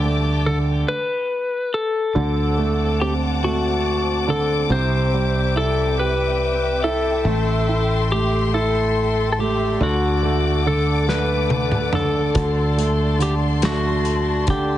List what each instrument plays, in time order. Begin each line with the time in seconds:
Already playing: fretless electric bass D2, grand piano D3, string section G3 D5 A5 D6, electric slide guitar G4
0.03 grand piano A3
0.46 grand piano D3, electric slide guitar A4
0.88 electric slide guitar B4
1.74 electric slide guitar A4
2.15 fretless electric bass D2, grand piano D3, string section C4 F#5 A5 D6
2.58 grand piano A3
3.01 grand piano C4, electric slide guitar G4
3.43 grand piano A3, electric slide guitar F#4
4.28 grand piano D3, electric slide guitar A4
4.70 fretless electric bass C2, grand piano C3, electric slide guitar C5, string section E5 G5
5.14 grand piano G3
5.56 grand piano E4, electric slide guitar A4
5.98 grand piano G4, electric slide guitar B4
6.84 grand piano E4, electric slide guitar A4
7.25 fretless electric bass A1, grand piano A3, string section A4 C6
7.69 grand piano E4
8.12 grand piano A3, electric slide guitar G4
8.54 grand piano E4, electric slide guitar A4
9.32 electric slide guitar A4
9.39 grand piano A3, electric slide guitar G4
9.81 fretless electric bass D2, grand piano D3, electric slide guitar F#4, string section D5 F#5 D6
10.23 grand piano A3
10.66 grand piano D3, electric slide guitar A4
11.09 grand piano A3, electric slide guitar B4, snare
11.50 high tom
11.72 mid tom
11.93 grand piano D3, electric slide guitar A4, mid tom
12.35 fretless electric bass D2, grand piano D3, string section A5 C6, kick, closed hi-hat
12.78 grand piano A3, closed hi-hat
13.19 grand piano D3, electric slide guitar G4, closed hi-hat
13.62 grand piano A3, electric slide guitar F#4, snare, closed hi-hat
14.05 closed hi-hat
14.47 grand piano D3, electric slide guitar G4, kick, closed hi-hat